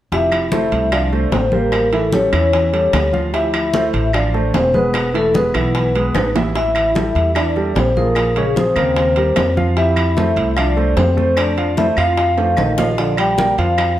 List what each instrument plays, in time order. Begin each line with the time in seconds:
0.12 upright bass F1, grand piano F3 G4 E5, trombone E4, vibraphone E5, high bongo, high conga, high timbale
0.32 high bongo, high conga, high timbale, claves
0.52 grand piano A3 A4 C5, high bongo, high conga, low timbale
0.72 upright bass C2, high conga, high timbale
0.92 grand piano F3 F4 F5, trombone D4, vibraphone D5, high bongo, high conga, high timbale, claves
1.12 grand piano A3 A4 C5, high bongo, high conga
1.32 upright bass A1, trombone C4, vibraphone C5, high bongo, low bongo, high conga, high timbale, low timbale
1.52 grand piano G3 G4 C5, trombone A#3, vibraphone A#4, high bongo, high conga
1.72 high bongo, high conga, high timbale, claves
1.93 grand piano E3 E4 E5, trombone A3, vibraphone A4, high bongo, high conga, high timbale
2.13 grand piano G3 G4 A4, trombone C#4, vibraphone C#5, high bongo, high conga, low timbale
2.33 upright bass E2, grand piano E3 E4 E5, high bongo, high conga, high timbale, claves
2.53 high bongo, high conga, high timbale
2.73 grand piano G3 G4 A4, high bongo, high conga, high timbale
2.93 upright bass D2, high bongo, low bongo, high conga, high timbale, low timbale, claves
3.12 grand piano F3 F4 F5, high conga
3.33 grand piano F3 G4 E5, trombone E4, vibraphone E5, high bongo, high conga, high timbale
3.54 high bongo, high conga, high timbale, claves
3.74 grand piano A3 A4 C5, high bongo, high conga, low timbale
3.94 upright bass A1, high conga, high timbale
4.13 grand piano F3 F4 F5, trombone D4, vibraphone D5, high bongo, high conga, high timbale, claves
4.34 grand piano A3 A4 C5, high bongo, high conga
4.54 upright bass E1, trombone C4, vibraphone C5, high bongo, low bongo, high conga, high timbale, low timbale
4.74 grand piano G#3 G#4 B4, trombone B3, vibraphone B4, high bongo, high conga
4.94 high bongo, high conga, high timbale, claves
5.14 grand piano E3 E4 E5, trombone A3, vibraphone A4, high bongo, high conga, high timbale
5.34 grand piano G#3 G#4 B4, trombone B3, vibraphone B4, high bongo, high conga, low timbale
5.54 upright bass B1, grand piano E3 E4 E5, high bongo, high timbale, claves
5.75 high bongo, high conga, high timbale
5.95 grand piano G#3 G#4 B4, high bongo, high conga, high timbale
6.15 upright bass A1, high bongo, low bongo, high conga, high timbale, claves
6.35 grand piano E3 E4 E5, high conga, low timbale
6.55 grand piano E3 E4 E5, trombone E4, vibraphone E5, high bongo, high conga, high timbale
6.75 high bongo, high conga, high timbale, claves
6.95 grand piano G3 G4 A4, high bongo, high conga, low timbale
7.15 upright bass E2, high conga, high timbale
7.35 grand piano E3 E4 E5, trombone D4, vibraphone D5, high bongo, high conga, high timbale, claves
7.56 grand piano G3 G4 A4, high bongo, high conga
7.75 upright bass A#1, trombone C4, vibraphone C5, high bongo, low bongo, high conga, high timbale, low timbale
7.96 grand piano F3 F4 G#4, trombone A#3, vibraphone A#4, high bongo, high conga
8.15 high bongo, high conga, high timbale, claves
8.36 grand piano C#3 C#4 C#5, trombone G#3, vibraphone G#4, high bongo, high conga, high timbale
8.56 grand piano F3 F4 G#4, trombone C4, vibraphone C5, high bongo, high conga, low timbale
8.76 upright bass D#2, grand piano C#3 A#3 A#4, high bongo, high conga, high timbale, claves
8.96 high bongo, high conga, high timbale
9.16 grand piano G3 G4 A#4, high bongo, high conga, high timbale
9.36 upright bass F2, high bongo, low bongo, high conga, high timbale, low timbale, claves
9.57 grand piano F3 F4 F5, high conga
9.77 grand piano F3 G4 E5, trombone E4, vibraphone E5, high bongo, high conga, high timbale
9.96 high bongo, high conga, high timbale, claves
10.17 grand piano A3 A4 C5, high bongo, high conga, low timbale
10.36 upright bass C2, high conga, high timbale
10.57 grand piano F3 F4 F5, trombone D4, vibraphone D5, high bongo, high conga, high timbale, claves
10.77 grand piano A3 A4 C5, high bongo, high conga
10.96 upright bass F2, trombone C4, vibraphone C5, high bongo, low bongo, high conga, high timbale, low timbale
11.17 grand piano A3 A4 C5, high bongo, high conga
11.37 trombone D4, vibraphone D5, high bongo, high conga, high timbale, claves
11.57 grand piano F3 F4 F5, high bongo, high conga, high timbale
11.77 grand piano A3 A4 C5, trombone E4, vibraphone E5, high bongo, high conga, low timbale
11.97 upright bass F2, grand piano F3 F4 F5, trombone F4, vibraphone F5, high bongo, high conga, high timbale, claves
12.17 high bongo, high conga, high timbale
12.37 grand piano A3 A4 C5, high bongo, high conga, high timbale
12.57 upright bass A#1, trombone D#3, vibraphone D#5, high bongo, high conga, high timbale, claves
12.78 grand piano F3 F4 F5, low bongo, high conga, low timbale
12.98 trombone D3, grand piano F3 F4, vibraphone D5, high bongo, high conga, high timbale
13.17 trombone G3, vibraphone G5, high bongo, high conga, high timbale, claves
13.38 grand piano A#3 A#4, high bongo, high conga, low timbale
13.58 upright bass F2, trombone F3, grand piano F4 F5, vibraphone F5, high conga, high timbale
13.78 high bongo, high conga, high timbale, claves